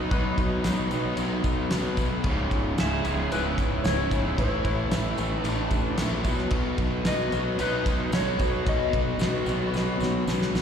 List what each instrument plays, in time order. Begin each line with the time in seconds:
Already playing: fingered electric bass B1, overdriven electric guitar B2 F#3 B3
0.11 fingered electric bass B1, overdriven electric guitar B2 F#3 B3, lead electric guitar D#4, electric slide guitar B4, kick, tambourine, crash
0.38 fingered electric bass B1, kick, tambourine, crash
0.64 fingered electric bass B1, overdriven electric guitar B2 F#3 B3, snare, tambourine, crash
0.91 fingered electric bass B1, overdriven electric guitar B2 F#3 B3, tambourine, crash
1.17 fingered electric bass B1, overdriven electric guitar B2 F#3 B3, tambourine, crash
1.44 fingered electric bass B1, kick, tambourine, crash
1.70 fingered electric bass B1, overdriven electric guitar B2 F#3 B3, snare, tambourine, crash
1.97 fingered electric bass B1, overdriven electric guitar B2 F#3 B3, kick, tambourine, crash
2.24 fingered electric bass C#1, overdriven electric guitar C#2 G#2 C#3, kick, crash
2.51 fingered electric bass C#1, kick, crash
2.77 fingered electric bass C#1, overdriven electric guitar C#2 G#2 C#3, lead electric guitar G#4, electric slide guitar E5, snare, tambourine, crash
3.04 fingered electric bass C#1, overdriven electric guitar C#2 G#2 C#3, tambourine, crash
3.31 fingered electric bass C#1, overdriven electric guitar C#2 G#2 C#3, lead electric guitar E4, electric slide guitar B4, tambourine, crash
3.58 fingered electric bass C#1, kick, tambourine, crash
3.84 fingered electric bass C#1, overdriven electric guitar C#2 G#2 C#3, lead electric guitar E4, electric slide guitar C#5, snare, tambourine, crash
4.11 fingered electric bass C#1, overdriven electric guitar C#2 G#2 C#3, kick, tambourine, crash
4.38 fingered electric bass A1, overdriven electric guitar A2 E3 A3, lead electric guitar E4, electric slide guitar C#5, kick, crash
4.65 fingered electric bass A1, kick, crash
4.91 fingered electric bass A1, overdriven electric guitar A2 E3 A3, snare, tambourine, crash
5.18 fingered electric bass A1, overdriven electric guitar A2 E3 A3, tambourine, crash
5.43 fingered electric bass A1, overdriven electric guitar A2 E3 A3, lead electric guitar D4, electric slide guitar B4, tambourine, crash
5.71 fingered electric bass A1, kick, tambourine, crash
5.97 fingered electric bass A#1, overdriven electric guitar A2 E3 A3, snare, tambourine, crash
6.24 fingered electric bass B1, overdriven electric guitar B2 F#3 B3, kick, tambourine, crash
6.38 snare
6.50 fingered electric bass B1, overdriven electric guitar B2 F#3 B3, kick, crash
6.78 fingered electric bass B1, kick, crash
7.05 fingered electric bass B1, overdriven electric guitar B2 F#3 B3, lead electric guitar F#4, electric slide guitar D#5, snare, tambourine, crash
7.32 fingered electric bass B1, overdriven electric guitar B2 F#3 B3, tambourine, crash
7.58 fingered electric bass B1, overdriven electric guitar B2 F#3 B3, lead electric guitar D#4, electric slide guitar B4, tambourine, crash
7.86 fingered electric bass B1, kick, tambourine, crash
8.12 fingered electric bass B1, overdriven electric guitar B2 F#3 B3, lead electric guitar F#4, electric slide guitar C#5, snare, tambourine, crash
8.39 fingered electric bass B1, overdriven electric guitar B2 F#3 B3, kick, tambourine, crash
8.66 fingered electric bass B1, overdriven electric guitar B2 F#3 B3, lead electric guitar F#4, electric slide guitar D#5, kick, tambourine, crash
8.93 fingered electric bass B1, kick, crash
9.19 fingered electric bass B1, overdriven electric guitar B2 F#3 B3, snare, tambourine, crash
9.46 fingered electric bass B1, overdriven electric guitar B2 F#3 B3, tambourine, crash
9.73 fingered electric bass B1, overdriven electric guitar B2 F#3 B3, snare, tambourine
10.00 fingered electric bass B1, snare, tambourine
10.27 fingered electric bass B1, overdriven electric guitar B2 F#3 B3, snare, tambourine
10.42 snare
10.54 fingered electric bass B1, overdriven electric guitar B2 F#3 B3, snare, tambourine